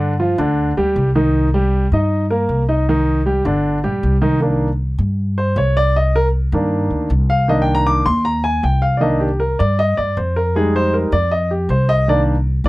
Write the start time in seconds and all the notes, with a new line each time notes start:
Already playing: G2 D3 D4
0.20 F3 F4
0.38 D2 D3 D4
0.77 D2 G3 G4
0.96 C2
1.15 D#3 D#4
1.54 G3 G4
1.92 G2 D#4 D#5
2.30 A#3 A#4
2.49 C2
2.69 D#4 D#5
2.89 D#3 D#4
3.26 G3 G4
3.45 G1 D3 D4
3.84 A#1 G3 G4
4.03 C2
4.22 D#3 D#4
4.41 D#3 A#3 D4
4.99 G2
5.38 C5
5.56 C2 C#5
5.77 D5
5.96 D#5
6.16 A#4
6.52 G2 D#3 A#3 D4
6.90 D2
7.10 C2
7.30 F5
7.48 D#3 A#3 D4 D#5
7.62 G5
7.75 A#5
7.87 D6
8.06 D#2 C6
8.25 A#5
8.44 G#5
8.63 C2 G5
8.82 F5
8.97 D#3 A#3 D5 D#5
9.02 D4
9.20 G4
9.40 A#4
9.59 G2 D5
9.79 D#5
9.97 G2 D5
10.17 F2 C5
10.36 A#4
10.55 G3 G#3 D#4 G#4
10.76 C5
10.94 A#4
11.12 F2 D5
11.31 D#5
11.51 G4
11.69 C2 C5
11.89 D#5
12.08 D#3 A#3 D4 D5
12.64 C2 D#3